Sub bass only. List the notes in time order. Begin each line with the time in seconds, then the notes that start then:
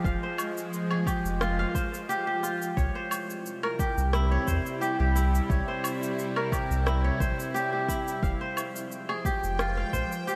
0.04 F1
1.25 F1
2.77 C2
3.97 C2
4.48 E2
5.00 C2
5.50 C2
6.70 C2
7.20 A#1
8.23 F1
9.43 F1
9.93 A#1